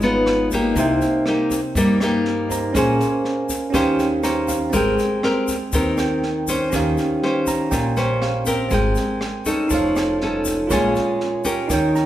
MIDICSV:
0, 0, Header, 1, 5, 480
1, 0, Start_track
1, 0, Key_signature, -4, "major"
1, 0, Tempo, 497100
1, 737, Time_signature, 4, 2, 24, 8
1, 11643, End_track
2, 0, Start_track
2, 0, Title_t, "Tine electric piano"
2, 0, Program_c, 0, 4
2, 0, Control_c, 0, 64, 127
2, 0, Note_on_c, 0, 65, 54
2, 0, Note_on_c, 0, 73, 53
2, 0, Note_on_c, 0, 75, 51
2, 0, Note_on_c, 0, 83, 63
2, 687, Note_off_c, 0, 65, 0
2, 697, Note_off_c, 0, 73, 0
2, 706, Note_off_c, 0, 75, 0
2, 717, Note_on_c, 0, 63, 56
2, 718, Note_off_c, 0, 83, 0
2, 739, Note_on_c, 0, 70, 51
2, 748, Control_c, 0, 64, 0
2, 754, Note_on_c, 0, 72, 51
2, 775, Note_on_c, 0, 79, 63
2, 922, Control_c, 0, 64, 127
2, 2374, Note_off_c, 0, 63, 0
2, 2386, Note_off_c, 0, 70, 0
2, 2394, Note_off_c, 0, 72, 0
2, 2400, Note_on_c, 0, 63, 42
2, 2404, Note_off_c, 0, 79, 0
2, 2411, Note_on_c, 0, 70, 38
2, 2419, Note_on_c, 0, 72, 39
2, 2430, Note_on_c, 0, 82, 49
2, 2631, Note_on_c, 0, 61, 54
2, 2636, Note_off_c, 0, 70, 0
2, 2647, Note_on_c, 0, 70, 53
2, 2649, Note_off_c, 0, 63, 0
2, 2659, Note_off_c, 0, 72, 0
2, 2664, Note_off_c, 0, 82, 0
2, 2670, Control_c, 0, 64, 0
2, 2670, Note_on_c, 0, 72, 50
2, 2690, Note_on_c, 0, 80, 64
2, 2858, Control_c, 0, 64, 127
2, 3565, Note_off_c, 0, 61, 0
2, 3576, Note_on_c, 0, 61, 55
2, 3593, Note_off_c, 0, 70, 0
2, 3597, Note_on_c, 0, 67, 51
2, 3605, Note_off_c, 0, 72, 0
2, 3615, Note_off_c, 0, 80, 0
2, 3620, Note_on_c, 0, 72, 49
2, 3630, Control_c, 0, 64, 0
2, 3632, Note_on_c, 0, 77, 57
2, 3798, Control_c, 0, 64, 127
2, 4092, Note_on_c, 0, 82, 57
2, 4317, Note_off_c, 0, 77, 0
2, 4318, Note_off_c, 0, 82, 0
2, 4328, Note_on_c, 0, 77, 48
2, 4537, Note_off_c, 0, 61, 0
2, 4539, Note_on_c, 0, 60, 52
2, 4548, Note_off_c, 0, 67, 0
2, 4556, Note_off_c, 0, 77, 0
2, 4559, Note_off_c, 0, 72, 0
2, 4577, Note_on_c, 0, 70, 54
2, 4590, Control_c, 0, 64, 0
2, 4600, Note_on_c, 0, 79, 60
2, 4787, Control_c, 0, 64, 127
2, 5733, Note_off_c, 0, 60, 0
2, 5753, Note_off_c, 0, 70, 0
2, 5765, Note_off_c, 0, 79, 0
2, 5765, Note_on_c, 0, 60, 42
2, 5787, Note_on_c, 0, 70, 38
2, 5793, Note_on_c, 0, 79, 46
2, 6471, Note_on_c, 0, 61, 57
2, 6490, Note_off_c, 0, 60, 0
2, 6491, Note_on_c, 0, 67, 53
2, 6501, Note_off_c, 0, 70, 0
2, 6504, Note_off_c, 0, 79, 0
2, 6507, Control_c, 0, 64, 0
2, 6511, Note_on_c, 0, 72, 48
2, 6529, Note_on_c, 0, 77, 63
2, 6689, Control_c, 0, 64, 127
2, 7219, Note_on_c, 0, 82, 57
2, 7441, Note_off_c, 0, 82, 0
2, 7446, Note_on_c, 0, 79, 50
2, 7897, Note_off_c, 0, 79, 0
2, 7927, Note_off_c, 0, 77, 0
2, 7938, Note_on_c, 0, 77, 54
2, 8364, Note_off_c, 0, 61, 0
2, 8374, Note_off_c, 0, 67, 0
2, 8383, Note_off_c, 0, 77, 0
2, 8384, Note_off_c, 0, 72, 0
2, 8388, Note_on_c, 0, 60, 56
2, 8427, Control_c, 0, 64, 0
2, 8427, Note_on_c, 0, 70, 51
2, 8442, Note_on_c, 0, 79, 63
2, 8590, Control_c, 0, 64, 127
2, 9341, Note_off_c, 0, 60, 0
2, 9348, Note_on_c, 0, 63, 55
2, 9361, Note_off_c, 0, 70, 0
2, 9369, Note_off_c, 0, 79, 0
2, 9369, Note_on_c, 0, 69, 52
2, 9381, Note_on_c, 0, 73, 51
2, 9386, Control_c, 0, 64, 0
2, 9408, Note_on_c, 0, 77, 60
2, 9584, Control_c, 0, 64, 127
2, 10301, Note_off_c, 0, 63, 0
2, 10305, Note_on_c, 0, 65, 56
2, 10312, Note_off_c, 0, 69, 0
2, 10318, Note_off_c, 0, 73, 0
2, 10324, Note_on_c, 0, 70, 54
2, 10332, Note_off_c, 0, 77, 0
2, 10341, Note_on_c, 0, 73, 55
2, 10346, Control_c, 0, 64, 0
2, 10361, Note_on_c, 0, 80, 60
2, 10506, Control_c, 0, 64, 127
2, 11259, Note_off_c, 0, 65, 0
2, 11269, Note_off_c, 0, 70, 0
2, 11275, Note_on_c, 0, 63, 54
2, 11278, Note_off_c, 0, 73, 0
2, 11288, Note_off_c, 0, 80, 0
2, 11297, Note_on_c, 0, 70, 49
2, 11303, Control_c, 0, 64, 0
2, 11316, Note_on_c, 0, 73, 51
2, 11333, Note_on_c, 0, 79, 61
2, 11481, Control_c, 0, 64, 127
2, 11544, Note_on_c, 0, 82, 52
2, 11643, Note_off_c, 0, 63, 0
2, 11643, Note_off_c, 0, 70, 0
2, 11643, Note_off_c, 0, 73, 0
2, 11643, Note_off_c, 0, 79, 0
2, 11643, Note_off_c, 0, 82, 0
2, 11643, End_track
3, 0, Start_track
3, 0, Title_t, "Nylon-string guitar"
3, 0, Program_c, 1, 24
3, 0, Note_on_c, 1, 56, 54
3, 31, Note_on_c, 1, 59, 62
3, 36, Note_on_c, 1, 63, 59
3, 41, Note_on_c, 1, 65, 64
3, 466, Note_off_c, 1, 59, 0
3, 468, Note_off_c, 1, 63, 0
3, 470, Note_off_c, 1, 65, 0
3, 515, Note_on_c, 1, 63, 55
3, 520, Note_on_c, 1, 58, 57
3, 521, Note_on_c, 1, 67, 65
3, 724, Note_off_c, 1, 56, 0
3, 749, Note_on_c, 1, 48, 54
3, 1189, Note_off_c, 1, 63, 0
3, 1190, Note_off_c, 1, 67, 0
3, 1191, Note_off_c, 1, 58, 0
3, 1231, Note_on_c, 1, 58, 52
3, 1235, Note_on_c, 1, 63, 48
3, 1240, Note_on_c, 1, 67, 54
3, 1534, Note_off_c, 1, 58, 0
3, 1535, Note_off_c, 1, 63, 0
3, 1538, Note_off_c, 1, 67, 0
3, 1680, Note_off_c, 1, 48, 0
3, 1706, Note_on_c, 1, 55, 57
3, 1710, Note_on_c, 1, 58, 57
3, 1711, Note_on_c, 1, 63, 52
3, 1716, Note_on_c, 1, 67, 59
3, 1905, Note_off_c, 1, 58, 0
3, 1906, Note_off_c, 1, 63, 0
3, 1908, Note_off_c, 1, 67, 0
3, 1955, Note_on_c, 1, 58, 60
3, 1958, Note_on_c, 1, 63, 59
3, 1964, Note_on_c, 1, 67, 63
3, 2629, Note_off_c, 1, 58, 0
3, 2629, Note_off_c, 1, 63, 0
3, 2633, Note_off_c, 1, 67, 0
3, 2638, Note_off_c, 1, 55, 0
3, 2660, Note_on_c, 1, 58, 50
3, 2663, Note_on_c, 1, 61, 51
3, 2664, Note_on_c, 1, 68, 54
3, 2669, Note_on_c, 1, 72, 57
3, 3304, Note_off_c, 1, 68, 0
3, 3305, Note_off_c, 1, 61, 0
3, 3309, Note_off_c, 1, 72, 0
3, 3596, Note_off_c, 1, 58, 0
3, 3608, Note_on_c, 1, 51, 57
3, 3611, Note_on_c, 1, 61, 60
3, 3617, Note_on_c, 1, 67, 61
3, 3619, Note_on_c, 1, 72, 60
3, 3924, Note_off_c, 1, 61, 0
3, 3925, Note_off_c, 1, 67, 0
3, 3925, Note_off_c, 1, 72, 0
3, 4088, Note_on_c, 1, 67, 54
3, 4094, Note_on_c, 1, 61, 50
3, 4098, Note_on_c, 1, 72, 50
3, 4415, Note_off_c, 1, 67, 0
3, 4418, Note_off_c, 1, 72, 0
3, 4419, Note_off_c, 1, 61, 0
3, 4550, Note_off_c, 1, 51, 0
3, 4564, Note_on_c, 1, 56, 53
3, 4564, Note_on_c, 1, 60, 53
3, 4565, Note_on_c, 1, 67, 49
3, 4570, Note_on_c, 1, 70, 55
3, 5011, Note_off_c, 1, 60, 0
3, 5013, Note_off_c, 1, 67, 0
3, 5014, Note_off_c, 1, 70, 0
3, 5053, Note_on_c, 1, 60, 50
3, 5057, Note_on_c, 1, 67, 56
3, 5062, Note_on_c, 1, 70, 62
3, 5364, Note_off_c, 1, 60, 0
3, 5365, Note_off_c, 1, 67, 0
3, 5368, Note_off_c, 1, 70, 0
3, 5507, Note_off_c, 1, 56, 0
3, 5534, Note_on_c, 1, 51, 56
3, 5542, Note_on_c, 1, 67, 62
3, 5543, Note_on_c, 1, 60, 55
3, 5546, Note_on_c, 1, 70, 65
3, 6016, Note_off_c, 1, 67, 0
3, 6017, Note_off_c, 1, 60, 0
3, 6018, Note_off_c, 1, 70, 0
3, 6262, Note_on_c, 1, 61, 54
3, 6268, Note_on_c, 1, 67, 58
3, 6271, Note_on_c, 1, 72, 67
3, 6471, Note_off_c, 1, 51, 0
3, 6505, Note_on_c, 1, 51, 56
3, 6941, Note_off_c, 1, 61, 0
3, 6942, Note_off_c, 1, 67, 0
3, 6945, Note_off_c, 1, 72, 0
3, 6985, Note_on_c, 1, 61, 51
3, 6986, Note_on_c, 1, 67, 55
3, 6990, Note_on_c, 1, 72, 63
3, 7436, Note_off_c, 1, 51, 0
3, 7457, Note_on_c, 1, 46, 56
3, 7661, Note_off_c, 1, 67, 0
3, 7662, Note_off_c, 1, 61, 0
3, 7664, Note_off_c, 1, 72, 0
3, 7693, Note_on_c, 1, 61, 66
3, 7698, Note_on_c, 1, 67, 57
3, 7699, Note_on_c, 1, 72, 69
3, 8136, Note_off_c, 1, 61, 0
3, 8138, Note_off_c, 1, 67, 0
3, 8138, Note_off_c, 1, 72, 0
3, 8173, Note_on_c, 1, 60, 55
3, 8174, Note_on_c, 1, 67, 61
3, 8181, Note_on_c, 1, 70, 63
3, 8392, Note_off_c, 1, 46, 0
3, 8414, Note_on_c, 1, 56, 55
3, 8855, Note_off_c, 1, 67, 0
3, 8856, Note_off_c, 1, 60, 0
3, 8856, Note_off_c, 1, 70, 0
3, 9131, Note_on_c, 1, 61, 57
3, 9138, Note_on_c, 1, 63, 54
3, 9138, Note_on_c, 1, 69, 62
3, 9350, Note_off_c, 1, 56, 0
3, 9371, Note_on_c, 1, 53, 58
3, 9815, Note_off_c, 1, 61, 0
3, 9816, Note_off_c, 1, 69, 0
3, 9817, Note_off_c, 1, 63, 0
3, 9873, Note_on_c, 1, 61, 53
3, 9873, Note_on_c, 1, 63, 50
3, 9883, Note_on_c, 1, 69, 55
3, 10304, Note_off_c, 1, 63, 0
3, 10305, Note_off_c, 1, 61, 0
3, 10308, Note_off_c, 1, 53, 0
3, 10310, Note_off_c, 1, 69, 0
3, 10341, Note_on_c, 1, 46, 52
3, 10347, Note_on_c, 1, 56, 49
3, 10348, Note_on_c, 1, 61, 56
3, 10350, Note_on_c, 1, 65, 61
3, 11021, Note_off_c, 1, 56, 0
3, 11021, Note_off_c, 1, 61, 0
3, 11023, Note_off_c, 1, 65, 0
3, 11051, Note_on_c, 1, 61, 57
3, 11055, Note_on_c, 1, 67, 59
3, 11062, Note_on_c, 1, 70, 60
3, 11273, Note_off_c, 1, 46, 0
3, 11303, Note_on_c, 1, 51, 56
3, 11643, Note_off_c, 1, 51, 0
3, 11643, Note_off_c, 1, 61, 0
3, 11643, Note_off_c, 1, 67, 0
3, 11643, Note_off_c, 1, 70, 0
3, 11643, End_track
4, 0, Start_track
4, 0, Title_t, "Upright bass"
4, 0, Program_c, 2, 32
4, 0, Note_on_c, 2, 32, 86
4, 698, Note_off_c, 2, 32, 0
4, 733, Note_on_c, 2, 36, 102
4, 958, Note_off_c, 2, 36, 0
4, 1694, Note_on_c, 2, 43, 83
4, 2618, Note_off_c, 2, 43, 0
4, 2652, Note_on_c, 2, 34, 101
4, 2878, Note_off_c, 2, 34, 0
4, 3612, Note_on_c, 2, 39, 89
4, 4536, Note_off_c, 2, 39, 0
4, 4567, Note_on_c, 2, 32, 96
4, 4795, Note_off_c, 2, 32, 0
4, 5532, Note_on_c, 2, 39, 83
4, 6455, Note_off_c, 2, 39, 0
4, 6492, Note_on_c, 2, 39, 101
4, 6717, Note_off_c, 2, 39, 0
4, 7454, Note_on_c, 2, 34, 89
4, 8375, Note_off_c, 2, 34, 0
4, 8407, Note_on_c, 2, 32, 107
4, 8634, Note_off_c, 2, 32, 0
4, 9371, Note_on_c, 2, 29, 84
4, 10293, Note_off_c, 2, 29, 0
4, 10337, Note_on_c, 2, 34, 101
4, 10558, Note_off_c, 2, 34, 0
4, 11297, Note_on_c, 2, 39, 84
4, 11643, Note_off_c, 2, 39, 0
4, 11643, End_track
5, 0, Start_track
5, 0, Title_t, "Drums"
5, 9, Note_on_c, 9, 82, 28
5, 13, Note_on_c, 9, 38, 24
5, 106, Note_off_c, 9, 82, 0
5, 110, Note_off_c, 9, 38, 0
5, 252, Note_on_c, 9, 37, 59
5, 252, Note_on_c, 9, 38, 23
5, 349, Note_off_c, 9, 37, 0
5, 349, Note_off_c, 9, 38, 0
5, 494, Note_on_c, 9, 36, 23
5, 494, Note_on_c, 9, 82, 64
5, 497, Note_on_c, 9, 38, 24
5, 590, Note_off_c, 9, 82, 0
5, 591, Note_off_c, 9, 36, 0
5, 593, Note_off_c, 9, 38, 0
5, 730, Note_on_c, 9, 38, 23
5, 733, Note_on_c, 9, 36, 53
5, 738, Note_on_c, 9, 82, 62
5, 827, Note_off_c, 9, 38, 0
5, 829, Note_off_c, 9, 36, 0
5, 834, Note_off_c, 9, 82, 0
5, 975, Note_on_c, 9, 38, 21
5, 980, Note_on_c, 9, 82, 27
5, 1072, Note_off_c, 9, 38, 0
5, 1076, Note_off_c, 9, 82, 0
5, 1213, Note_on_c, 9, 37, 57
5, 1213, Note_on_c, 9, 38, 24
5, 1310, Note_off_c, 9, 37, 0
5, 1310, Note_off_c, 9, 38, 0
5, 1453, Note_on_c, 9, 36, 24
5, 1453, Note_on_c, 9, 38, 25
5, 1458, Note_on_c, 9, 82, 58
5, 1549, Note_off_c, 9, 38, 0
5, 1550, Note_off_c, 9, 36, 0
5, 1554, Note_off_c, 9, 82, 0
5, 1692, Note_on_c, 9, 38, 25
5, 1694, Note_on_c, 9, 36, 58
5, 1702, Note_on_c, 9, 82, 64
5, 1789, Note_off_c, 9, 38, 0
5, 1790, Note_off_c, 9, 36, 0
5, 1798, Note_off_c, 9, 82, 0
5, 1935, Note_on_c, 9, 37, 58
5, 1935, Note_on_c, 9, 38, 24
5, 1947, Note_on_c, 9, 82, 26
5, 2032, Note_off_c, 9, 37, 0
5, 2032, Note_off_c, 9, 38, 0
5, 2044, Note_off_c, 9, 82, 0
5, 2174, Note_on_c, 9, 38, 23
5, 2270, Note_off_c, 9, 38, 0
5, 2414, Note_on_c, 9, 36, 23
5, 2417, Note_on_c, 9, 38, 23
5, 2425, Note_on_c, 9, 82, 63
5, 2511, Note_off_c, 9, 36, 0
5, 2514, Note_off_c, 9, 38, 0
5, 2521, Note_off_c, 9, 82, 0
5, 2654, Note_on_c, 9, 36, 59
5, 2654, Note_on_c, 9, 37, 60
5, 2654, Note_on_c, 9, 38, 22
5, 2662, Note_on_c, 9, 82, 58
5, 2750, Note_off_c, 9, 37, 0
5, 2750, Note_off_c, 9, 38, 0
5, 2751, Note_off_c, 9, 36, 0
5, 2759, Note_off_c, 9, 82, 0
5, 2896, Note_on_c, 9, 38, 21
5, 2907, Note_on_c, 9, 82, 25
5, 2992, Note_off_c, 9, 38, 0
5, 3003, Note_off_c, 9, 82, 0
5, 3135, Note_on_c, 9, 38, 25
5, 3231, Note_off_c, 9, 38, 0
5, 3371, Note_on_c, 9, 36, 23
5, 3373, Note_on_c, 9, 38, 24
5, 3374, Note_on_c, 9, 82, 63
5, 3467, Note_off_c, 9, 36, 0
5, 3469, Note_off_c, 9, 38, 0
5, 3470, Note_off_c, 9, 82, 0
5, 3610, Note_on_c, 9, 36, 57
5, 3610, Note_on_c, 9, 37, 59
5, 3610, Note_on_c, 9, 38, 24
5, 3612, Note_on_c, 9, 82, 62
5, 3706, Note_off_c, 9, 36, 0
5, 3707, Note_off_c, 9, 37, 0
5, 3707, Note_off_c, 9, 38, 0
5, 3709, Note_off_c, 9, 82, 0
5, 3851, Note_on_c, 9, 38, 24
5, 3856, Note_on_c, 9, 82, 27
5, 3948, Note_off_c, 9, 38, 0
5, 3952, Note_off_c, 9, 82, 0
5, 4089, Note_on_c, 9, 37, 60
5, 4089, Note_on_c, 9, 38, 25
5, 4091, Note_on_c, 9, 82, 53
5, 4185, Note_off_c, 9, 37, 0
5, 4185, Note_off_c, 9, 38, 0
5, 4188, Note_off_c, 9, 82, 0
5, 4329, Note_on_c, 9, 82, 65
5, 4330, Note_on_c, 9, 36, 22
5, 4331, Note_on_c, 9, 38, 23
5, 4425, Note_off_c, 9, 82, 0
5, 4426, Note_off_c, 9, 36, 0
5, 4427, Note_off_c, 9, 38, 0
5, 4569, Note_on_c, 9, 82, 60
5, 4571, Note_on_c, 9, 36, 55
5, 4571, Note_on_c, 9, 38, 22
5, 4665, Note_off_c, 9, 82, 0
5, 4668, Note_off_c, 9, 36, 0
5, 4668, Note_off_c, 9, 38, 0
5, 4812, Note_on_c, 9, 38, 21
5, 4815, Note_on_c, 9, 82, 26
5, 4909, Note_off_c, 9, 38, 0
5, 4912, Note_off_c, 9, 82, 0
5, 5053, Note_on_c, 9, 37, 59
5, 5053, Note_on_c, 9, 38, 23
5, 5149, Note_off_c, 9, 37, 0
5, 5149, Note_off_c, 9, 38, 0
5, 5290, Note_on_c, 9, 82, 61
5, 5292, Note_on_c, 9, 36, 23
5, 5295, Note_on_c, 9, 38, 24
5, 5386, Note_off_c, 9, 82, 0
5, 5389, Note_off_c, 9, 36, 0
5, 5391, Note_off_c, 9, 38, 0
5, 5529, Note_on_c, 9, 82, 65
5, 5530, Note_on_c, 9, 38, 23
5, 5533, Note_on_c, 9, 36, 59
5, 5626, Note_off_c, 9, 38, 0
5, 5626, Note_off_c, 9, 82, 0
5, 5629, Note_off_c, 9, 36, 0
5, 5769, Note_on_c, 9, 82, 27
5, 5772, Note_on_c, 9, 37, 57
5, 5772, Note_on_c, 9, 38, 25
5, 5866, Note_off_c, 9, 82, 0
5, 5869, Note_off_c, 9, 37, 0
5, 5869, Note_off_c, 9, 38, 0
5, 6013, Note_on_c, 9, 38, 24
5, 6110, Note_off_c, 9, 38, 0
5, 6253, Note_on_c, 9, 82, 64
5, 6255, Note_on_c, 9, 36, 24
5, 6259, Note_on_c, 9, 38, 24
5, 6350, Note_off_c, 9, 82, 0
5, 6351, Note_off_c, 9, 36, 0
5, 6355, Note_off_c, 9, 38, 0
5, 6490, Note_on_c, 9, 82, 61
5, 6495, Note_on_c, 9, 36, 55
5, 6495, Note_on_c, 9, 37, 55
5, 6495, Note_on_c, 9, 38, 25
5, 6587, Note_off_c, 9, 82, 0
5, 6591, Note_off_c, 9, 36, 0
5, 6592, Note_off_c, 9, 37, 0
5, 6592, Note_off_c, 9, 38, 0
5, 6733, Note_on_c, 9, 82, 27
5, 6737, Note_on_c, 9, 38, 21
5, 6830, Note_off_c, 9, 82, 0
5, 6834, Note_off_c, 9, 38, 0
5, 6978, Note_on_c, 9, 38, 23
5, 7075, Note_off_c, 9, 38, 0
5, 7210, Note_on_c, 9, 82, 62
5, 7214, Note_on_c, 9, 36, 25
5, 7216, Note_on_c, 9, 38, 25
5, 7307, Note_off_c, 9, 82, 0
5, 7310, Note_off_c, 9, 36, 0
5, 7313, Note_off_c, 9, 38, 0
5, 7451, Note_on_c, 9, 82, 63
5, 7452, Note_on_c, 9, 36, 58
5, 7453, Note_on_c, 9, 37, 56
5, 7453, Note_on_c, 9, 38, 24
5, 7548, Note_off_c, 9, 82, 0
5, 7549, Note_off_c, 9, 36, 0
5, 7550, Note_off_c, 9, 37, 0
5, 7550, Note_off_c, 9, 38, 0
5, 7692, Note_on_c, 9, 82, 27
5, 7697, Note_on_c, 9, 38, 24
5, 7789, Note_off_c, 9, 82, 0
5, 7793, Note_off_c, 9, 38, 0
5, 7935, Note_on_c, 9, 37, 60
5, 7935, Note_on_c, 9, 38, 23
5, 8031, Note_off_c, 9, 37, 0
5, 8031, Note_off_c, 9, 38, 0
5, 8168, Note_on_c, 9, 82, 65
5, 8174, Note_on_c, 9, 36, 23
5, 8180, Note_on_c, 9, 38, 25
5, 8265, Note_off_c, 9, 82, 0
5, 8270, Note_off_c, 9, 36, 0
5, 8276, Note_off_c, 9, 38, 0
5, 8406, Note_on_c, 9, 82, 60
5, 8412, Note_on_c, 9, 36, 56
5, 8414, Note_on_c, 9, 38, 23
5, 8503, Note_off_c, 9, 82, 0
5, 8508, Note_off_c, 9, 36, 0
5, 8511, Note_off_c, 9, 38, 0
5, 8644, Note_on_c, 9, 82, 27
5, 8656, Note_on_c, 9, 38, 21
5, 8740, Note_off_c, 9, 82, 0
5, 8752, Note_off_c, 9, 38, 0
5, 8892, Note_on_c, 9, 37, 60
5, 8892, Note_on_c, 9, 38, 24
5, 8988, Note_off_c, 9, 37, 0
5, 8988, Note_off_c, 9, 38, 0
5, 9130, Note_on_c, 9, 82, 62
5, 9133, Note_on_c, 9, 36, 25
5, 9139, Note_on_c, 9, 38, 24
5, 9226, Note_off_c, 9, 82, 0
5, 9229, Note_off_c, 9, 36, 0
5, 9235, Note_off_c, 9, 38, 0
5, 9366, Note_on_c, 9, 82, 63
5, 9373, Note_on_c, 9, 36, 55
5, 9376, Note_on_c, 9, 38, 23
5, 9463, Note_off_c, 9, 82, 0
5, 9469, Note_off_c, 9, 36, 0
5, 9473, Note_off_c, 9, 38, 0
5, 9613, Note_on_c, 9, 82, 28
5, 9622, Note_on_c, 9, 37, 61
5, 9622, Note_on_c, 9, 38, 24
5, 9710, Note_off_c, 9, 82, 0
5, 9719, Note_off_c, 9, 37, 0
5, 9719, Note_off_c, 9, 38, 0
5, 9857, Note_on_c, 9, 38, 25
5, 9953, Note_off_c, 9, 38, 0
5, 10090, Note_on_c, 9, 82, 65
5, 10095, Note_on_c, 9, 36, 23
5, 10102, Note_on_c, 9, 38, 23
5, 10187, Note_off_c, 9, 82, 0
5, 10192, Note_off_c, 9, 36, 0
5, 10198, Note_off_c, 9, 38, 0
5, 10334, Note_on_c, 9, 82, 60
5, 10336, Note_on_c, 9, 36, 53
5, 10342, Note_on_c, 9, 37, 58
5, 10342, Note_on_c, 9, 38, 23
5, 10430, Note_off_c, 9, 82, 0
5, 10433, Note_off_c, 9, 36, 0
5, 10439, Note_off_c, 9, 37, 0
5, 10439, Note_off_c, 9, 38, 0
5, 10576, Note_on_c, 9, 82, 25
5, 10581, Note_on_c, 9, 38, 22
5, 10672, Note_off_c, 9, 82, 0
5, 10678, Note_off_c, 9, 38, 0
5, 10818, Note_on_c, 9, 38, 23
5, 10915, Note_off_c, 9, 38, 0
5, 11052, Note_on_c, 9, 38, 23
5, 11053, Note_on_c, 9, 82, 60
5, 11054, Note_on_c, 9, 36, 24
5, 11149, Note_off_c, 9, 38, 0
5, 11149, Note_off_c, 9, 82, 0
5, 11151, Note_off_c, 9, 36, 0
5, 11296, Note_on_c, 9, 36, 58
5, 11296, Note_on_c, 9, 37, 60
5, 11296, Note_on_c, 9, 38, 24
5, 11298, Note_on_c, 9, 82, 65
5, 11392, Note_off_c, 9, 36, 0
5, 11393, Note_off_c, 9, 37, 0
5, 11393, Note_off_c, 9, 38, 0
5, 11395, Note_off_c, 9, 82, 0
5, 11542, Note_on_c, 9, 82, 25
5, 11544, Note_on_c, 9, 38, 25
5, 11638, Note_off_c, 9, 82, 0
5, 11641, Note_off_c, 9, 38, 0
5, 11643, End_track
0, 0, End_of_file